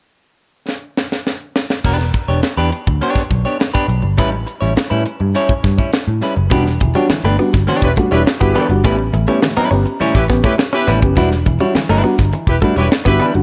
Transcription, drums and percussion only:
0.69 snare medium
0.97 snare medium
1.12 snare medium
1.27 snare medium
1.56 snare medium
1.70 snare medium
1.84 kick medium
1.84 crash medium
2.00 snare soft
2.14 kick medium
2.14 closed hi-hat medium
2.43 snare medium
2.43 closed hi-hat medium
2.72 closed hi-hat medium
2.87 kick medium
3.02 closed hi-hat medium
3.16 kick medium
3.16 snare soft
3.31 kick medium
3.31 closed hi-hat medium
3.60 snare loud
3.60 closed hi-hat medium
3.75 kick medium
3.89 closed hi-hat medium
4.18 kick medium
4.18 closed hi-hat medium
4.48 closed hi-hat medium
4.77 snare medium
4.77 closed hi-hat medium
5.06 closed hi-hat medium
5.35 closed hi-hat medium
5.49 kick medium
5.64 kick medium
5.64 snare soft
5.64 closed hi-hat medium
5.78 kick loud
5.78 closed hi-hat medium
5.93 snare loud
5.93 closed hi-hat medium
6.21 snare soft
6.21 closed hi-hat medium
6.51 kick loud
6.51 closed hi-hat loud
6.66 snare soft
6.66 closed hi-hat soft
6.80 kick medium
6.80 closed hi-hat medium
6.95 closed hi-hat soft
7.10 snare loud
7.39 open hi-hat soft
7.53 kick medium
7.53 snare soft
7.53 closed hi-hat soft
7.68 closed hi-hat medium
7.82 kick medium
7.97 kick medium
7.97 closed hi-hat medium
8.12 closed hi-hat medium
8.27 snare loud
8.41 kick medium
8.41 closed hi-hat soft
8.55 closed hi-hat medium
8.70 closed hi-hat medium
8.84 kick loud
8.84 closed hi-hat loud
9.14 closed hi-hat medium
9.28 closed hi-hat soft
9.42 snare loud
9.72 open hi-hat medium
9.86 closed hi-hat soft
10.01 closed hi-hat medium
10.15 kick medium
10.29 kick medium
10.29 snare soft
10.29 closed hi-hat medium
10.44 kick loud
10.44 closed hi-hat medium
10.59 snare loud
10.73 closed hi-hat soft
10.87 snare soft
10.87 closed hi-hat medium
11.02 kick loud
11.02 closed hi-hat soft
11.17 kick loud
11.17 closed hi-hat medium
11.31 snare soft
11.31 closed hi-hat soft
11.46 kick medium
11.46 closed hi-hat medium
11.60 closed hi-hat soft
11.75 snare medium
12.04 open hi-hat medium
12.18 kick medium
12.18 snare soft
12.18 closed hi-hat soft
12.33 closed hi-hat medium
12.47 kick medium
12.62 kick medium
12.62 closed hi-hat medium
12.76 closed hi-hat medium
12.92 snare loud
13.06 kick medium
13.20 closed hi-hat medium
13.34 closed hi-hat medium

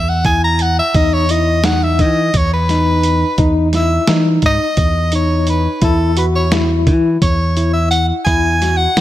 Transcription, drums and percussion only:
0.25 kick medium
0.25 closed hi-hat medium
0.59 closed hi-hat medium
0.94 kick loud
0.94 closed hi-hat medium
1.29 closed hi-hat medium
1.64 snare loud
1.64 closed hi-hat medium
1.99 kick medium
1.99 closed hi-hat medium
2.34 kick medium
2.34 closed hi-hat medium
2.69 snare soft
2.69 closed hi-hat medium
3.03 closed hi-hat medium
3.38 kick loud
3.38 closed hi-hat medium
3.73 snare soft
3.73 closed hi-hat medium
4.08 snare loud
4.08 closed hi-hat medium
4.42 kick medium
4.42 closed hi-hat medium
4.77 kick loud
4.77 closed hi-hat medium
5.12 closed hi-hat medium
5.47 closed hi-hat medium
5.82 kick medium
5.82 closed hi-hat medium
6.17 closed hi-hat medium
6.52 snare loud
6.52 closed hi-hat medium
6.87 kick medium
6.87 closed hi-hat medium
7.22 kick medium
7.22 closed hi-hat medium
7.57 closed hi-hat medium
7.92 closed hi-hat medium
8.27 kick medium
8.27 closed hi-hat medium
8.62 snare soft
8.62 closed hi-hat medium
8.97 snare loud
8.97 closed hi-hat medium

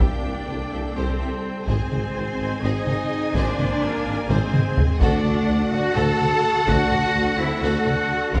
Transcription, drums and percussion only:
0.00 taiko medium
1.68 taiko medium
1.92 taiko mid soft
2.87 taiko mid soft
3.34 taiko loud
3.58 taiko mid soft
4.30 taiko mid medium
4.53 taiko mid medium
4.77 taiko low medium
5.01 taiko medium
5.25 taiko mid soft
6.20 taiko mid soft
6.68 taiko loud
6.91 taiko mid soft
7.87 taiko mid soft
8.35 taiko medium

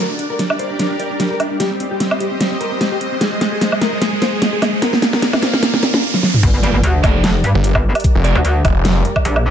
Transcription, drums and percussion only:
0.19 closed hi-hat medium
0.39 snare soft
0.39 closed hi-hat medium
0.50 low woodblock medium
0.59 closed hi-hat medium
0.79 snare medium
0.79 closed hi-hat medium
1.00 closed hi-hat soft
1.20 snare medium
1.20 closed hi-hat medium
1.40 closed hi-hat medium
1.40 low woodblock medium
1.60 snare medium
1.60 closed hi-hat medium
1.80 closed hi-hat medium
2.00 snare medium
2.00 closed hi-hat medium
2.11 low woodblock medium
2.20 closed hi-hat medium
2.41 snare medium
2.41 closed hi-hat medium
2.61 closed hi-hat medium
2.81 snare medium
2.81 closed hi-hat medium
3.01 closed hi-hat medium
3.21 snare medium
3.21 closed hi-hat medium
3.41 snare medium
3.41 closed hi-hat medium
3.61 snare medium
3.61 closed hi-hat medium
3.72 low woodblock medium
3.81 snare medium
3.81 closed hi-hat medium
4.02 snare medium
4.02 closed hi-hat medium
4.22 snare medium
4.22 closed hi-hat medium
4.42 snare medium
4.42 closed hi-hat medium
4.62 snare medium
4.62 closed hi-hat medium
4.62 low woodblock medium
4.82 snare medium
4.82 closed hi-hat medium
4.93 snare medium
5.02 snare loud
5.02 closed hi-hat medium
5.13 snare medium
5.22 snare medium
5.22 closed hi-hat medium
5.33 snare medium
5.33 low woodblock medium
5.42 snare loud
5.42 closed hi-hat medium
5.53 snare medium
5.63 snare loud
5.63 closed hi-hat medium
5.74 snare medium
5.83 snare loud
5.83 closed hi-hat soft
5.94 snare medium
6.14 snare medium
6.23 snare medium
6.34 mid tom medium
6.43 kick loud
6.43 closed hi-hat medium
6.43 crash loud
6.63 closed hi-hat medium
6.84 closed hi-hat medium
7.04 kick loud
7.04 closed hi-hat medium
7.04 low woodblock medium
7.24 snare loud
7.24 closed hi-hat medium
7.44 closed hi-hat medium
7.64 closed hi-hat medium
7.75 kick medium
7.75 low woodblock medium
7.95 closed hi-hat medium
7.95 low woodblock medium
8.00 closed hi-hat medium
8.04 kick loud
8.04 closed hi-hat medium
8.24 closed hi-hat medium
8.45 closed hi-hat medium
8.65 kick loud
8.65 closed hi-hat medium
8.65 low woodblock medium
8.85 snare loud
8.85 closed hi-hat medium
9.05 closed hi-hat medium
9.16 kick medium
9.16 low woodblock medium
9.25 closed hi-hat medium
9.36 low woodblock medium

